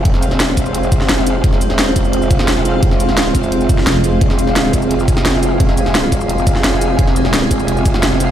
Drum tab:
HH |x-x-x-x-x-x-x-x-|x-x-x-x-x-x-x-x-|x-x-x-x-x-x-x-x-|x-x-x-x-x-x-x-x-|
SH |--x---xx-xx---x-|--x---xx-xx---x-|--x---xx-xx---x-|--x---xx-xx---x-|
SD |-o-oo------oo---|-o-oo------oo---|-o-oo------oo---|-o-oo------oo---|
BD |o-----o---o-----|o-----o---o-----|o-----o---o-----|o-----o---o-----|

HH |x-x-x-x-x-x-x-x-|x-x-x-x-x-x-x-x-|
SH |--x---xx-xx---x-|--x---xx-xx---x-|
SD |-o-oo------oo---|-o-oo------oo---|
BD |o-----o---o-----|o-----o---o-----|